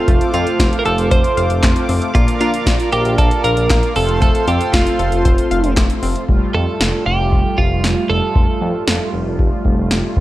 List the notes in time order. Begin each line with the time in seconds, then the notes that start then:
Already playing: A3 C4 F4 A4 C5 F5
0.08 F1 A3 D6, kick, closed hi-hat
0.21 closed hi-hat
0.34 F2 C4 F4, closed hi-hat
0.47 closed hi-hat
0.59 F1 F4, kick, snare, closed hi-hat
0.73 closed hi-hat
0.79 A#4
0.85 F1 A4, closed hi-hat
0.98 F1, closed hi-hat
1.11 F1 C5, kick, closed hi-hat
1.24 closed hi-hat
1.37 F1 F5, closed hi-hat
1.50 F1, closed hi-hat
1.63 F1 A3, kick, snare, clap, closed hi-hat
1.76 closed hi-hat
1.89 F1 C4, open hi-hat
2.02 closed hi-hat
2.15 A#1 A#3 D4 F4 A#4 D5 F5, kick, closed hi-hat
2.28 closed hi-hat
2.41 A#2 D4 F4, closed hi-hat
2.54 closed hi-hat
2.66 A#1 F4, kick, snare, closed hi-hat
2.80 closed hi-hat
2.92 A#1 G4 A#4, closed hi-hat
3.05 A#1, closed hi-hat
3.18 A#1 A4 D5, kick, closed hi-hat
3.31 closed hi-hat
3.44 A#1 A#4 F5, closed hi-hat
3.57 A#1, closed hi-hat
3.70 A#1 A#3, kick, snare, clap, closed hi-hat
3.83 closed hi-hat
3.96 F1 A3 C4 F4 A4 C5 C6, open hi-hat
4.09 closed hi-hat
4.22 A3 A4, kick, closed hi-hat
4.35 closed hi-hat
4.48 F2 C4 G4, closed hi-hat
4.61 closed hi-hat
4.73 F1 F4, kick, snare, closed hi-hat
4.87 closed hi-hat
4.99 F1 A4, closed hi-hat
5.12 F1, closed hi-hat
5.25 F1 C5, kick, closed hi-hat
5.38 closed hi-hat
5.51 F1 F5, closed hi-hat
5.64 F1, closed hi-hat
5.77 F1 A3, kick, snare, clap, closed hi-hat
5.90 closed hi-hat
6.03 F1 C4, open hi-hat
6.16 closed hi-hat
6.29 F1 G3 A3 F4, kick
6.54 F2 A4
6.80 F1, snare
7.06 F1 G4
7.19 F1
7.32 F1, kick
7.58 F1 F4, kick
7.71 F1
7.84 F1, snare
8.10 F1 A4
8.36 F1, kick
8.61 F2
8.87 F1, snare
9.13 F1
9.26 F1
9.39 F1, kick
9.65 F1, kick
9.78 F1
9.91 F1, snare
10.17 F1, kick